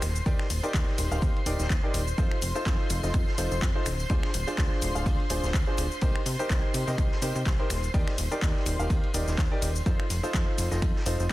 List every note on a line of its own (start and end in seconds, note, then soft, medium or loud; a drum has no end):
0.00 0.21 D#1 medium
0.00 11.32 C5 medium
0.00 11.32 C6 medium
0.00 finger snap medium
0.00 snare medium
0.00 open hi-hat medium
0.00 ride medium
0.00 tambourine loud
0.00 shaker medium
0.15 tambourine medium
0.15 shaker soft
0.26 0.36 D#2 loud
0.26 0.44 D#4 medium
0.26 0.44 G4 medium
0.26 0.43 A#4 medium
0.26 0.44 D5 loud
0.26 kick loud
0.26 ride medium
0.26 tambourine soft
0.26 shaker soft
0.39 finger snap medium
0.39 snare soft
0.50 0.60 D#1 medium
0.50 open hi-hat loud
0.50 ride medium
0.50 tambourine loud
0.50 shaker medium
0.63 1.08 D#4 loud
0.63 1.08 G4 medium
0.63 1.08 A#4 medium
0.63 1.08 D5 loud
0.63 ride soft
0.63 tambourine medium
0.63 shaker soft
0.74 0.84 D#2 loud
0.74 kick loud
0.74 snare loud
0.74 clap loud
0.74 ride medium
0.74 tambourine soft
0.74 shaker soft
0.87 snare soft
0.98 1.08 D#1 loud
0.98 open hi-hat loud
0.98 ride medium
0.98 tambourine medium
0.98 shaker medium
1.11 1.20 D#1 loud
1.11 1.38 D#4 medium
1.11 1.38 G4 medium
1.11 1.38 A#4 medium
1.11 1.38 F5 medium
1.11 tambourine medium
1.11 shaker soft
1.21 1.32 D#2 medium
1.21 kick loud
1.21 ride medium
1.21 tambourine soft
1.21 shaker soft
1.36 ride soft
1.46 1.56 D#1 medium
1.46 1.64 D#4 medium
1.46 1.64 G4 medium
1.46 1.64 A#4 medium
1.46 1.64 D5 medium
1.46 open hi-hat loud
1.46 ride medium
1.46 tambourine medium
1.46 shaker medium
1.59 1.68 D#1 medium
1.59 snare medium
1.59 tambourine medium
1.59 shaker soft
1.70 1.80 D#2 loud
1.70 kick loud
1.70 snare loud
1.70 clap loud
1.70 ride medium
1.70 tambourine soft
1.70 shaker soft
1.83 1.99 D#4 medium
1.83 1.99 G4 medium
1.83 1.99 A#4 medium
1.83 1.99 D5 loud
1.94 2.13 D#1 medium
1.94 open hi-hat loud
1.94 ride medium
1.94 tambourine loud
1.94 shaker medium
2.07 tambourine medium
2.07 shaker soft
2.18 2.28 F2 loud
2.18 2.36 D#4 medium
2.18 2.36 F4 medium
2.18 2.36 A4 medium
2.18 2.36 C5 loud
2.18 kick loud
2.18 ride medium
2.18 shaker soft
2.31 finger snap medium
2.41 2.52 F1 medium
2.41 open hi-hat loud
2.41 ride medium
2.41 tambourine loud
2.41 shaker medium
2.55 3.00 D#4 loud
2.55 3.00 F4 medium
2.55 3.00 A4 medium
2.55 3.00 C5 loud
2.55 tambourine medium
2.55 shaker soft
2.65 2.76 F2 loud
2.65 kick loud
2.65 snare loud
2.65 clap loud
2.65 ride medium
2.65 tambourine soft
2.65 shaker soft
2.90 3.00 F1 loud
2.90 open hi-hat loud
2.90 ride medium
2.90 tambourine medium
2.90 shaker medium
3.03 3.12 F1 medium
3.03 3.30 D#4 medium
3.03 3.30 F4 medium
3.03 3.30 A4 medium
3.03 3.30 D#5 medium
3.03 snare soft
3.03 tambourine soft
3.03 shaker soft
3.14 3.24 F2 loud
3.14 finger snap medium
3.14 kick loud
3.14 ride medium
3.14 tambourine soft
3.14 shaker soft
3.27 snare soft
3.38 3.48 F1 medium
3.38 3.55 D#4 medium
3.38 3.55 F4 medium
3.38 3.55 A4 medium
3.38 3.55 C5 medium
3.38 open hi-hat loud
3.38 ride medium
3.38 tambourine loud
3.38 shaker medium
3.51 3.60 F1 medium
3.51 tambourine medium
3.51 shaker soft
3.62 3.72 F2 loud
3.62 kick loud
3.62 snare loud
3.62 clap loud
3.62 ride medium
3.62 shaker soft
3.75 3.85 D#4 medium
3.75 3.85 F4 medium
3.75 3.85 A4 medium
3.75 3.85 C5 loud
3.86 4.05 D1 medium
3.86 finger snap medium
3.86 snare medium
3.86 open hi-hat medium
3.86 ride medium
3.86 tambourine medium
3.86 shaker medium
3.99 tambourine medium
3.99 shaker soft
4.10 4.20 D2 loud
4.10 4.27 D4 medium
4.10 4.27 F4 medium
4.10 4.27 G#4 medium
4.10 4.27 C5 loud
4.10 kick loud
4.10 ride medium
4.10 tambourine soft
4.10 shaker soft
4.23 finger snap medium
4.23 snare soft
4.34 4.44 D1 medium
4.34 open hi-hat loud
4.34 ride medium
4.34 tambourine loud
4.34 shaker medium
4.47 4.92 D4 loud
4.47 4.92 F4 medium
4.47 4.92 G#4 medium
4.47 4.92 C5 loud
4.47 ride soft
4.47 tambourine soft
4.47 shaker soft
4.58 4.68 D2 loud
4.58 kick loud
4.58 snare loud
4.58 clap loud
4.58 ride medium
4.58 shaker soft
4.72 snare soft
4.81 4.92 D1 loud
4.81 open hi-hat loud
4.81 ride medium
4.81 tambourine medium
4.81 shaker medium
4.95 5.04 D1 loud
4.95 5.22 D4 medium
4.95 5.22 F4 medium
4.95 5.22 G#4 medium
4.95 5.22 F5 medium
4.95 tambourine medium
4.95 shaker soft
5.06 5.16 D2 loud
5.06 kick loud
5.06 ride medium
5.06 tambourine soft
5.06 shaker soft
5.20 ride soft
5.30 5.40 D1 medium
5.30 5.47 D4 medium
5.30 5.47 F4 medium
5.30 5.47 G#4 medium
5.30 5.47 C5 medium
5.30 open hi-hat loud
5.30 ride medium
5.30 tambourine loud
5.30 shaker medium
5.43 5.52 D1 medium
5.43 snare medium
5.43 tambourine medium
5.43 shaker soft
5.54 5.64 D2 medium
5.54 kick loud
5.54 snare loud
5.54 clap loud
5.54 ride loud
5.54 tambourine soft
5.54 shaker soft
5.67 5.83 D4 loud
5.67 5.83 F4 medium
5.67 5.83 G#4 medium
5.67 5.83 C5 loud
5.77 5.88 D1 medium
5.77 open hi-hat medium
5.77 ride medium
5.77 tambourine medium
5.77 shaker medium
5.92 tambourine medium
5.92 shaker soft
6.01 6.12 C2 loud
6.01 6.19 D#4 medium
6.01 6.19 G4 medium
6.01 6.19 A#4 medium
6.01 6.19 C5 loud
6.01 kick loud
6.01 ride medium
6.01 tambourine soft
6.01 shaker soft
6.16 finger snap medium
6.26 6.36 C3 medium
6.26 open hi-hat loud
6.26 ride medium
6.26 tambourine medium
6.26 shaker medium
6.39 6.84 D#4 loud
6.39 6.84 G4 medium
6.39 6.84 A#4 medium
6.39 6.84 C5 loud
6.39 tambourine medium
6.39 shaker soft
6.50 6.60 C2 loud
6.50 kick loud
6.50 snare loud
6.50 clap loud
6.50 ride medium
6.50 tambourine soft
6.50 shaker soft
6.74 6.84 C3 loud
6.74 open hi-hat loud
6.74 ride medium
6.74 tambourine medium
6.74 shaker medium
6.87 6.96 C3 loud
6.87 7.14 D#4 medium
6.87 7.14 G4 medium
6.87 7.14 A#4 medium
6.87 7.14 D#5 medium
6.87 snare soft
6.87 tambourine medium
6.87 shaker soft
6.98 7.08 C2 loud
6.98 finger snap medium
6.98 kick loud
6.98 ride medium
6.98 tambourine soft
6.98 shaker soft
7.12 snare medium
7.22 7.32 C3 medium
7.22 7.39 D#4 medium
7.22 7.40 G4 medium
7.22 7.40 A#4 medium
7.22 7.39 C5 medium
7.22 open hi-hat loud
7.22 ride medium
7.22 tambourine loud
7.22 shaker medium
7.35 7.44 C3 medium
7.35 tambourine medium
7.35 shaker soft
7.46 7.56 C2 loud
7.46 kick loud
7.46 snare loud
7.46 clap loud
7.46 ride loud
7.46 tambourine soft
7.46 shaker soft
7.59 7.69 D#4 medium
7.59 7.69 G4 medium
7.59 7.69 A#4 medium
7.59 7.69 C5 loud
7.70 7.89 D#1 medium
7.70 finger snap medium
7.70 snare medium
7.70 open hi-hat loud
7.70 ride medium
7.70 tambourine medium
7.70 shaker medium
7.83 tambourine soft
7.83 shaker soft
7.94 8.04 D#2 loud
7.94 8.12 D#4 medium
7.94 8.12 G4 medium
7.94 8.12 A#4 medium
7.94 8.12 D5 loud
7.94 kick loud
7.94 ride loud
7.94 tambourine soft
7.94 shaker soft
8.08 finger snap medium
8.08 snare soft
8.18 8.28 D#1 medium
8.18 open hi-hat loud
8.18 ride medium
8.18 tambourine medium
8.18 shaker medium
8.31 8.76 D#4 loud
8.31 8.76 G4 medium
8.31 8.76 A#4 medium
8.31 8.76 D5 loud
8.31 ride soft
8.31 tambourine soft
8.31 shaker soft
8.42 8.52 D#2 loud
8.42 kick loud
8.42 snare loud
8.42 clap loud
8.42 ride medium
8.42 shaker soft
8.56 snare soft
8.66 8.76 D#1 loud
8.66 open hi-hat medium
8.66 ride medium
8.66 tambourine medium
8.66 shaker medium
8.79 8.88 D#1 medium
8.79 9.06 D#4 medium
8.79 9.06 G4 medium
8.79 9.06 A#4 medium
8.79 9.06 F5 medium
8.79 tambourine soft
8.79 shaker soft
8.90 9.00 D#2 loud
8.90 kick loud
8.90 ride loud
8.90 tambourine soft
8.90 shaker soft
9.03 ride soft
9.14 9.24 D#1 medium
9.14 9.31 D#4 medium
9.14 9.31 G4 medium
9.14 9.32 A#4 medium
9.14 9.31 D5 medium
9.14 open hi-hat loud
9.14 ride medium
9.14 tambourine medium
9.14 shaker medium
9.28 9.36 D#1 medium
9.28 snare medium
9.28 tambourine medium
9.28 shaker soft
9.38 9.48 D#2 medium
9.38 kick loud
9.38 snare loud
9.38 clap loud
9.38 ride loud
9.38 tambourine soft
9.38 shaker soft
9.51 9.67 D#4 medium
9.51 9.67 G4 medium
9.51 9.67 A#4 medium
9.51 9.67 D5 loud
9.62 9.81 D#1 medium
9.62 open hi-hat loud
9.62 ride medium
9.62 tambourine medium
9.62 shaker medium
9.75 tambourine soft
9.75 shaker soft
9.86 9.96 F2 loud
9.86 10.04 D#4 medium
9.86 10.04 F4 medium
9.86 10.04 A4 medium
9.86 10.04 C5 loud
9.86 kick loud
9.86 ride medium
9.86 shaker soft
10.00 finger snap medium
10.10 10.20 F1 medium
10.10 open hi-hat loud
10.10 ride medium
10.10 tambourine medium
10.10 shaker medium
10.23 10.68 D#4 loud
10.23 10.68 F4 medium
10.23 10.68 A4 medium
10.23 10.68 C5 loud
10.23 tambourine soft
10.23 shaker soft
10.34 10.44 F2 loud
10.34 kick loud
10.34 snare loud
10.34 clap loud
10.34 ride medium
10.34 tambourine soft
10.34 shaker soft
10.58 10.68 F1 loud
10.58 open hi-hat medium
10.58 ride medium
10.58 tambourine medium
10.58 shaker medium
10.71 10.80 F1 medium
10.71 10.98 D#4 medium
10.71 10.98 F4 medium
10.71 10.98 A4 medium
10.71 10.98 D#5 medium
10.71 snare soft
10.71 tambourine medium
10.71 shaker soft
10.82 10.92 F2 loud
10.82 finger snap medium
10.82 kick loud
10.82 ride medium
10.82 shaker soft
10.96 snare medium
11.06 11.16 F1 medium
11.06 11.24 D#4 medium
11.06 11.24 F4 medium
11.06 11.24 A4 medium
11.06 11.23 C5 medium
11.06 open hi-hat loud
11.06 ride medium
11.06 tambourine medium
11.06 shaker medium
11.19 11.28 F1 medium
11.19 tambourine soft
11.19 shaker soft
11.29 tambourine soft